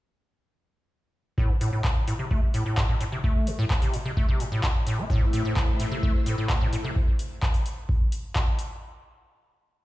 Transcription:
1.38 1.51 A2 loud
1.38 kick loud
1.49 1.53 G2 medium
1.61 1.71 A2 medium
1.61 open hi-hat loud
1.73 1.82 A2 medium
1.84 kick loud
1.84 clap loud
2.08 2.14 A2 medium
2.08 open hi-hat loud
2.19 2.26 C3 medium
2.31 2.40 A3 medium
2.31 kick loud
2.54 2.64 A2 medium
2.54 open hi-hat loud
2.66 2.79 A2 medium
2.77 2.84 G2 medium
2.77 kick loud
2.77 clap loud
2.89 2.95 A2 medium
3.01 3.04 A2 medium
3.01 open hi-hat loud
3.12 3.19 C3 medium
3.24 3.49 A3 medium
3.24 kick loud
3.47 3.51 A2 medium
3.47 open hi-hat loud
3.59 3.65 A2 medium
3.70 3.74 A3 medium
3.70 kick loud
3.70 clap loud
3.82 3.95 C3 medium
3.82 open hi-hat medium
3.94 3.97 A2 medium
3.94 open hi-hat loud
4.05 4.12 C3 medium
4.17 4.27 A3 medium
4.17 kick loud
4.29 4.42 C3 medium
4.40 4.44 A2 medium
4.40 open hi-hat loud
4.52 4.61 A2 medium
4.63 4.67 A2 medium
4.63 kick loud
4.63 clap loud
4.87 5.00 A2 medium
4.87 open hi-hat loud
4.98 5.05 C4 medium
5.10 5.23 A2 loud
5.10 6.94 A3 medium
5.10 6.94 E4 medium
5.10 6.94 C5 medium
5.10 6.94 E5 medium
5.10 kick loud
5.22 5.25 G2 medium
5.33 5.43 A2 medium
5.33 open hi-hat loud
5.45 5.54 A2 medium
5.56 5.63 A2 medium
5.56 kick loud
5.56 clap loud
5.80 5.86 A2 medium
5.80 open hi-hat loud
5.91 5.98 C3 medium
6.03 6.13 A3 medium
6.03 kick loud
6.26 6.36 A2 medium
6.26 open hi-hat loud
6.38 6.51 A2 medium
6.49 6.56 G2 medium
6.49 kick loud
6.49 clap loud
6.61 6.67 A2 medium
6.73 6.77 A2 medium
6.73 open hi-hat loud
6.84 6.91 C3 medium
6.96 kick loud
7.19 open hi-hat loud
7.42 kick loud
7.42 clap loud
7.54 open hi-hat medium
7.66 open hi-hat loud
7.89 kick loud
8.12 open hi-hat loud
8.35 kick loud
8.35 clap loud
8.59 open hi-hat loud

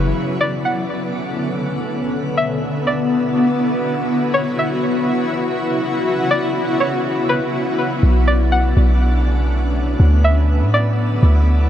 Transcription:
0.00 0.13 F#1 loud
0.00 0.12 C#3 medium
0.00 0.12 F#3 medium
0.00 0.12 B3 medium
0.00 0.12 E4 medium
0.16 4.06 D3 medium
0.16 7.99 B3 medium
0.16 2.11 C#4 medium
0.16 2.11 A4 medium
0.41 0.64 D5 medium
0.65 1.60 F#5 medium
2.13 7.99 E4 medium
2.13 7.99 F#4 medium
2.37 2.84 E5 medium
2.87 3.57 D5 medium
4.10 7.99 C#3 medium
4.34 4.57 C#5 medium
4.59 5.53 E5 medium
6.31 6.77 D5 medium
6.80 7.26 C#5 medium
7.29 7.53 B4 medium
8.03 8.74 B1 loud
8.03 9.98 A3 medium
8.03 11.70 B3 medium
8.03 9.98 C#4 medium
8.03 9.98 D4 medium
8.28 8.51 D5 medium
8.52 9.46 F#5 medium
8.77 9.96 B1 loud
10.00 10.63 D2 loud
10.00 11.70 D3 medium
10.00 11.70 F#3 medium
10.00 11.70 E4 medium
10.24 10.71 E5 medium
10.61 11.20 A2 loud
10.74 11.43 D5 medium
11.23 11.70 D2 loud

